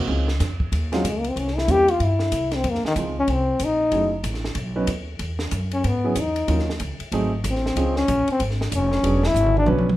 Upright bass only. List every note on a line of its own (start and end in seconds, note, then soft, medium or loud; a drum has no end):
0.08 0.39 C#2 medium
0.40 0.71 F2 medium
0.72 1.03 D#2 medium
1.05 1.35 C#2 medium
1.36 1.67 C2 medium
1.68 1.99 E2 loud
2.00 2.31 G2 medium
2.32 2.63 C2 medium
2.64 2.82 F2 loud
2.84 muted upright bass stroke soft
2.96 3.27 C#2 loud
3.28 3.59 C2 medium
3.59 3.91 A#1 medium
3.92 4.23 F#1 medium
4.24 4.54 A1 loud
4.55 4.86 B1 medium
4.88 5.19 D#2 medium
5.19 5.51 E2 medium
5.52 5.83 F#2 loud
5.84 6.15 G#2 medium
6.16 6.47 E2 medium
6.48 6.79 D#2 medium
6.80 6.98 C#2 loud
7.00 muted upright bass stroke soft
7.12 7.43 G#1 medium
7.44 7.75 A1 loud
7.76 8.07 C#2 medium
8.08 8.27 A#1 loud
8.28 muted upright bass stroke soft
8.40 8.71 G#1 medium
8.72 9.03 F1 medium
9.04 9.34 E1 loud
9.34 9.66 G#1 loud
9.66 9.97 B1 loud